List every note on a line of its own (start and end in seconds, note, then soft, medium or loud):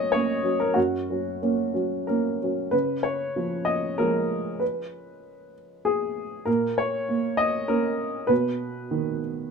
0.00 0.74 F#2 soft
0.00 0.43 F#3 soft
0.00 0.13 A#3 soft
0.00 0.14 C#4 soft
0.00 0.79 B4 medium
0.00 0.12 C#5 medium
0.00 0.12 D#5 medium
0.12 0.42 A#3 soft
0.12 0.42 C#4 soft
0.12 0.60 C#5 medium
0.43 0.73 F#3 soft
0.43 0.73 C#4 soft
0.60 0.76 A#4 medium
0.74 2.69 F#2 soft
0.74 2.06 F#4 medium
1.10 1.39 F#3 soft
1.10 1.40 C#4 soft
1.42 1.72 A#3 soft
1.42 1.72 C#4 soft
1.74 2.04 F#3 soft
1.74 2.04 C#4 soft
2.07 2.38 A#3 soft
2.07 2.38 C#4 soft
2.07 2.73 A#4 medium
2.42 2.71 F#3 soft
2.42 2.71 C#4 soft
2.71 4.57 C#3 soft
2.71 3.04 B4 medium
3.03 3.67 C#5 medium
3.36 3.98 F3 soft
3.65 3.97 D#5 medium
3.98 6.43 F3 soft
3.98 6.43 G#3 soft
3.98 6.44 C#4 soft
3.98 4.61 A#4 medium
4.60 5.53 B4 soft
5.85 6.47 G#4 medium
6.45 8.26 A#2 soft
6.45 6.77 A#4 medium
6.78 7.39 C#5 medium
7.09 7.67 A#3 soft
7.37 7.68 D#5 medium
7.68 8.26 A#3 soft
7.68 8.26 C#4 soft
7.68 8.30 A#4 medium
8.27 9.51 B2 soft
8.27 9.19 B4 medium
8.91 9.51 D#3 soft